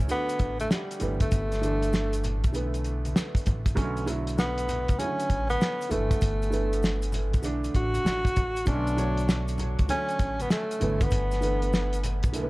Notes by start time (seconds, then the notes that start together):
0.00 C#2
0.08 D3 A3 B3 D4 F#4, closed hi-hat, high conga, maracas
0.29 closed hi-hat, maracas
0.39 A1, kick, closed hi-hat, maracas
0.60 A3, closed hi-hat, high conga, maracas
0.71 G3, snare, maracas
0.91 closed hi-hat, maracas
1.00 G1 D3 E3 A3 B3, closed hi-hat, low conga, maracas
1.20 A3, kick, closed hi-hat, maracas
1.31 G1, kick, closed hi-hat, maracas
1.52 snare, closed hi-hat, maracas
1.61 D3 E3 A3 D4, closed hi-hat, maracas
1.82 closed hi-hat, maracas
1.93 snare, maracas
2.13 closed hi-hat, maracas
2.24 closed hi-hat, low conga, maracas
2.44 B1, kick, closed hi-hat, maracas
2.52 D3 E3 A3 B3, closed hi-hat, high conga, maracas
2.74 closed hi-hat, maracas
2.84 closed hi-hat, maracas
3.05 closed hi-hat, high conga, maracas
3.16 snare, maracas
3.35 kick, closed hi-hat, maracas
3.46 A1, kick, closed hi-hat, low conga, maracas
3.66 kick, closed hi-hat, maracas
3.75 B1 D3 F#3 A3 C#4, kick, closed hi-hat, maracas
3.97 closed hi-hat, maracas
4.06 D3 F#3 A3 E4, closed hi-hat, maracas
4.27 closed hi-hat, maracas
4.38 B3, snare, maracas
4.58 closed hi-hat, maracas
4.69 closed hi-hat, low conga, maracas
4.88 C#2, kick, closed hi-hat, maracas
4.98 C#3 F#3 A3 C#4 E4, closed hi-hat, high conga, maracas
5.05 D3
5.19 closed hi-hat, maracas
5.30 A1, kick, closed hi-hat, maracas
5.50 B3, closed hi-hat, high conga, maracas
5.61 snare, maracas
5.81 closed hi-hat, maracas
5.89 G1 D3 E3 A3 B3, closed hi-hat, low conga, maracas
6.11 kick, closed hi-hat, maracas
6.21 G1, kick, closed hi-hat, maracas
6.42 closed hi-hat, maracas
6.50 D3 E3 A3 B3, closed hi-hat, maracas
6.73 closed hi-hat, maracas
6.83 snare, maracas
7.02 closed hi-hat, maracas
7.12 closed hi-hat, low conga, maracas
7.33 B1, kick, closed hi-hat, maracas
7.42 D3 E3 A3 D4, closed hi-hat, high conga, maracas
7.64 closed hi-hat, maracas
7.75 A1 F#4, kick, closed hi-hat, maracas
7.94 closed hi-hat, high conga, maracas
8.05 A1, snare, maracas
8.25 kick, closed hi-hat, maracas
8.36 A1, kick, closed hi-hat, low conga, maracas
8.56 closed hi-hat, maracas
8.65 B1 D3 F#3 A3 C#4 D4, kick, closed hi-hat, maracas
8.87 closed hi-hat, maracas
8.97 D3 F#3 A3 C#5, closed hi-hat, maracas
9.17 closed hi-hat, maracas
9.29 snare, maracas
9.48 closed hi-hat, maracas
9.58 closed hi-hat, low conga, maracas
9.79 C#2, kick, closed hi-hat, maracas
9.89 D3 F#3 A3 C#4, closed hi-hat, high conga, maracas
10.09 closed hi-hat, maracas
10.19 A1, kick, closed hi-hat, maracas
10.40 B3, closed hi-hat, high conga, maracas
10.50 A3, snare, maracas
10.71 closed hi-hat, maracas
10.80 G1 D3 E3 A3 B3, closed hi-hat, low conga, maracas
11.01 B3, kick, closed hi-hat, maracas
11.11 G1, kick, closed hi-hat, maracas
11.31 snare, closed hi-hat, maracas
11.41 D3 E3 A3 B3, closed hi-hat, maracas
11.62 closed hi-hat, maracas
11.73 snare, maracas
11.93 closed hi-hat, maracas
12.04 closed hi-hat, low conga, maracas
12.23 B1, kick, closed hi-hat, maracas
12.33 D3 E3 A3 A#3, closed hi-hat, high conga, maracas
12.41 B3